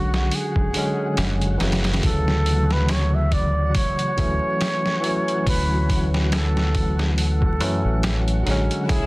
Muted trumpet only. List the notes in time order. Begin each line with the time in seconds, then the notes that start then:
Already playing: F#4
0.35 G#4
2.05 A4
2.72 B4
2.91 C#5
3.15 E5
3.33 D5
3.75 C#5
5.48 B4
6.34 A4
7.21 A4
8.91 G#4